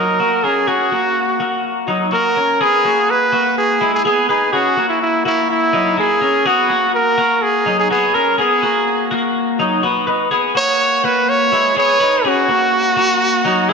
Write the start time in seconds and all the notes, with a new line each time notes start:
Already playing: F#3 D#4 A#4
0.20 A#3 F#4
0.44 C#4 G#4 A#4
0.67 C#4 F#4 G#4
0.92 A#3 F#4
1.40 A#3 F#4
1.88 F#3 D#4
2.12 A#3 F#4 A#4
2.37 C#4 A#4
2.61 B3 G#4
2.85 A#3 F#4
3.10 B4
3.32 A#3 F#4
3.58 G#4
3.81 G#3 E4
3.94 G#4
4.05 B3 G#4
4.29 D#4 G#4 B4
4.53 C#4 F#4 G#4
4.77 A#3 F#4
4.88 E4
5.02 E4
5.25 A#3 E4 F#4
5.50 E4
5.73 F#3 D#4
5.97 A#3 E4 G#4
6.21 C#4 A#4
6.46 B3 F#4 G#4
6.70 A#3 F#4
6.95 A#4
7.18 A#3 F#4
7.42 G#4
7.66 F#3 D#4
7.79 G#4
7.91 B3 F#4 G#4
8.14 C#4 A#4
8.38 B3 G#4
8.63 A#3 F#4
9.11 A#3 F#4
9.59 F#3 D#4
9.83 B3 F#4
10.07 D#4 B4
10.31 B3 G#4
10.55 A#3 F#4 C#5
11.04 A#3 F#4 B4
11.29 C#5
11.52 G#3 E4
11.76 B3 G#4 C#5
12.00 D#4 B4
12.25 C#4 F#4 G#4
12.48 A#3 F#4
12.97 A#3 F#4
13.45 F#3 D#4
13.69 A#3 E4 G#4